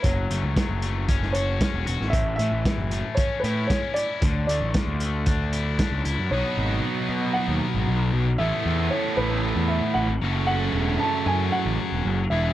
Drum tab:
HH |x-x-x-x-x-x-x-x-|x-x-x-x-x-x-x-x-|x-x-x-x-x-x-x-x-|----------------|
SD |----o----o--o--o|----o-------o---|----o-------o---|----------------|
BD |o---o---o---o---|o---o---o---o---|o---o---o---o---|----------------|

HH |----------------|----------------|
SD |----------------|----------------|
BD |----------------|----------------|